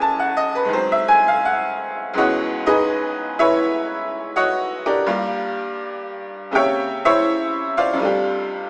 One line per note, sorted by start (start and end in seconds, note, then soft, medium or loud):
0.00 0.70 D#2 medium
0.00 0.70 C#3 medium
0.00 0.70 F#3 soft
0.00 0.70 A3 medium
0.00 0.72 G#5 medium
0.00 0.23 A5 loud
0.19 0.45 F#5 medium
0.37 0.53 D#5 loud
0.55 0.68 B4 medium
0.65 2.12 G#2 soft
0.65 2.15 D#3 soft
0.73 2.17 F#3 soft
0.73 2.18 C4 medium
0.73 0.96 C5 medium
0.92 1.17 E5 medium
1.08 1.25 G#5 loud
1.28 1.41 F5 medium
1.45 1.74 F#5 medium
2.14 5.06 C#2 medium
2.14 5.06 G#2 medium
2.14 5.06 E3 medium
2.14 5.07 G#3 soft
2.14 5.08 B3 medium
2.18 2.65 F#4 medium
2.18 2.65 C#5 medium
2.18 2.65 D#5 medium
2.18 2.65 F#5 medium
2.66 3.35 D#4 medium
2.66 3.35 G#4 medium
2.66 3.35 B4 medium
2.66 3.34 D#5 medium
3.39 4.30 E4 medium
3.39 4.31 B4 medium
3.39 4.31 C#5 medium
3.39 4.30 E5 loud
4.36 4.83 F#4 medium
4.36 4.83 C#5 medium
4.36 4.83 D#5 medium
4.36 4.83 F#5 medium
4.86 5.77 D4 medium
4.86 5.77 G4 medium
4.86 5.77 A#4 medium
4.86 5.77 D5 medium
5.06 6.52 G2 medium
5.06 6.52 G3 medium
5.06 6.50 A#3 medium
5.06 6.53 F4 medium
6.51 7.94 C3 soft
6.51 7.98 C#3 soft
6.51 7.98 A#3 soft
6.51 7.98 G4 medium
6.51 7.02 G5 loud
6.56 7.03 C#5 medium
6.56 7.02 E5 medium
7.05 7.73 E4 medium
7.05 7.73 C5 medium
7.05 7.73 C#5 medium
7.05 7.73 E5 loud
7.77 8.68 F4 medium
7.77 8.68 C5 medium
7.77 8.68 D5 medium
7.77 8.68 F5 medium
7.93 8.70 F2 medium
7.93 8.70 C3 soft
7.98 8.70 G3 soft
7.98 8.70 A3 medium
8.02 8.70 D4 medium
8.02 8.70 G4 medium